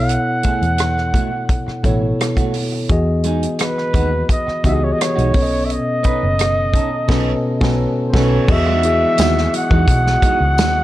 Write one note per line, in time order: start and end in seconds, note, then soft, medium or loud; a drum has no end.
0.00 0.16 B1 medium
0.00 0.86 B2 medium
0.00 0.86 B3 medium
0.00 0.86 E4 medium
0.00 0.87 A4 medium
0.00 0.87 C#5 medium
0.00 2.03 F#5 loud
0.09 closed hi-hat medium
0.43 0.63 A3 medium
0.43 0.64 E4 medium
0.43 0.64 G#4 medium
0.43 muted fingered electric bass stroke soft
0.43 kick medium
0.43 closed hi-hat medium
0.62 1.17 E2 medium
0.62 closed hi-hat soft
0.78 muted clean electric guitar stroke soft
0.78 cross-stick loud
0.78 closed hi-hat medium
0.98 cross-stick soft
1.14 1.29 A3 medium
1.14 1.30 E4 medium
1.14 1.30 F#4 medium
1.14 kick medium
1.14 closed hi-hat medium
1.32 muted clean electric guitar stroke soft
1.49 kick medium
1.49 closed hi-hat medium
1.67 muted clean electric guitar stroke soft
1.67 muted fingered electric bass stroke soft
1.67 cross-stick soft
1.83 2.12 A1 medium
1.83 2.49 B2 medium
1.83 2.03 A3 medium
1.83 2.49 B3 medium
1.83 2.50 E4 medium
1.83 2.02 E4 medium
1.83 2.01 F#4 medium
1.83 2.50 A4 medium
1.83 2.50 C#5 medium
1.83 kick medium
1.83 closed hi-hat medium
2.02 muted clean electric guitar stroke soft
2.20 muted clean electric guitar stroke soft
2.20 cross-stick loud
2.20 closed hi-hat medium
2.37 2.54 A3 soft
2.37 2.54 E4 medium
2.37 2.55 F#4 medium
2.37 kick medium
2.37 closed hi-hat soft
2.54 muted clean electric guitar stroke soft
2.54 open hi-hat medium
2.72 muted clean electric guitar stroke soft
2.89 3.45 E2 medium
2.89 3.76 E3 medium
2.89 3.76 B3 medium
2.89 3.77 F#4 medium
2.89 3.77 G#4 medium
2.89 3.78 D#5 medium
2.89 kick loud
2.89 closed hi-hat medium
3.24 3.44 G#3 medium
3.24 3.44 D#4 medium
3.24 3.44 G#4 medium
3.24 closed hi-hat medium
3.43 closed hi-hat soft
3.59 4.26 B4 medium
3.59 muted clean electric guitar stroke soft
3.59 cross-stick medium
3.59 closed hi-hat medium
3.78 cross-stick soft
3.94 4.22 D#2 medium
3.94 4.09 G#3 medium
3.94 4.09 D#4 medium
3.94 4.10 F#4 medium
3.94 kick medium
3.94 closed hi-hat medium
4.12 muted clean electric guitar stroke soft
4.29 4.67 D#5 medium
4.29 kick medium
4.29 closed hi-hat medium
4.47 muted clean electric guitar stroke soft
4.47 muted fingered electric bass stroke soft
4.47 cross-stick soft
4.64 4.92 C#2 medium
4.64 5.29 E3 medium
4.64 4.83 G#3 medium
4.64 5.30 B3 medium
4.64 4.81 D#4 medium
4.64 5.30 F#4 medium
4.64 4.80 F#4 medium
4.64 4.72 G4 soft
4.64 5.30 D#5 medium
4.64 4.76 E5 medium
4.64 kick medium
4.64 closed hi-hat medium
4.73 5.34 G#4 medium
4.73 4.85 D#5 medium
4.81 4.94 C#5 medium
4.81 muted clean electric guitar stroke soft
4.93 5.04 D#5 medium
4.99 5.67 C#5 medium
4.99 muted clean electric guitar stroke soft
4.99 cross-stick loud
4.99 closed hi-hat loud
5.16 5.31 B1 medium
5.16 5.36 G#3 soft
5.16 5.33 D#4 medium
5.16 5.33 F#4 medium
5.16 closed hi-hat soft
5.33 5.76 B1 medium
5.33 6.46 B2 medium
5.33 6.46 B3 medium
5.33 6.46 C#4 medium
5.33 6.47 A4 medium
5.33 5.42 C#5 medium
5.33 muted clean electric guitar stroke soft
5.33 kick medium
5.33 open hi-hat medium
5.42 6.50 D#5 medium
5.51 muted clean electric guitar stroke soft
5.65 5.73 E5 medium
5.70 7.80 D#5 loud
5.70 closed hi-hat medium
6.03 6.23 C#4 medium
6.03 6.23 D#4 medium
6.03 6.24 B4 medium
6.03 muted fingered electric bass stroke soft
6.03 kick medium
6.03 closed hi-hat medium
6.23 6.78 F#1 medium
6.38 muted clean electric guitar stroke soft
6.38 cross-stick medium
6.38 closed hi-hat medium
6.73 6.89 C#4 medium
6.73 6.89 D#4 medium
6.73 6.89 A4 medium
6.73 kick medium
6.73 closed hi-hat medium
6.91 muted clean electric guitar stroke soft
7.08 7.33 B1 loud
7.08 7.32 B2 medium
7.08 7.33 B3 medium
7.08 7.32 C#4 medium
7.08 7.33 C#4 medium
7.08 7.33 D#4 medium
7.08 7.33 A4 medium
7.08 7.34 B4 medium
7.08 kick loud
7.08 snare medium
7.08 crash medium
7.60 7.85 B1 medium
7.60 7.85 B2 medium
7.60 7.85 B3 medium
7.60 7.85 C#4 medium
7.60 7.85 D#4 medium
7.60 7.86 A4 medium
7.60 7.86 B4 medium
7.60 kick loud
7.60 snare loud
8.09 8.37 B2 medium
8.09 8.18 C5 medium
8.13 8.38 B1 medium
8.13 8.37 B3 medium
8.13 8.38 C#4 loud
8.13 8.38 C#4 medium
8.13 8.38 D#4 medium
8.13 8.37 A4 medium
8.13 8.38 A4 medium
8.13 8.39 B4 medium
8.13 8.53 C#5 medium
8.13 kick loud
8.13 snare medium
8.13 crash medium
8.47 9.04 E2 loud
8.47 8.70 E3 medium
8.47 10.84 F#3 medium
8.47 10.84 G#3 medium
8.47 8.70 B3 medium
8.47 10.84 F#4 medium
8.47 8.70 F#4 medium
8.47 8.71 G#4 medium
8.47 8.71 D#5 medium
8.47 9.55 E5 loud
8.47 muted clean electric guitar stroke soft
8.47 kick loud
8.47 crash loud
8.66 8.83 G#3 medium
8.66 8.83 D#4 medium
8.66 8.83 F#4 medium
8.83 9.71 B3 medium
8.83 9.70 E4 medium
8.83 9.71 F#4 medium
8.83 9.71 G#4 medium
8.83 9.72 E5 medium
8.83 muted clean electric guitar stroke soft
8.83 closed hi-hat medium
9.01 muted clean electric guitar stroke soft
9.17 9.46 D#2 medium
9.17 9.37 G#3 medium
9.17 9.38 D#4 medium
9.17 9.38 F#4 medium
9.17 snare loud
9.17 closed hi-hat medium
9.17 tambourine medium
9.38 snare soft
9.53 10.84 F#5 loud
9.53 muted clean electric guitar stroke soft
9.53 closed hi-hat medium
9.70 9.85 E2 loud
9.70 9.86 G#3 soft
9.70 9.86 D#4 medium
9.70 9.86 F#4 medium
9.70 kick medium
9.88 10.16 B1 loud
9.88 kick loud
9.88 closed hi-hat medium
10.05 muted clean electric guitar stroke soft
10.05 snare soft
10.22 10.42 G#3 medium
10.22 10.40 D#4 medium
10.22 10.39 F#4 medium
10.22 kick medium
10.22 closed hi-hat medium
10.40 10.58 C#2 medium
10.40 muted clean electric guitar stroke soft
10.58 10.84 D#2 medium
10.58 muted clean electric guitar stroke soft
10.58 snare loud
10.58 closed hi-hat medium
10.58 tambourine medium
10.75 muted clean electric guitar stroke soft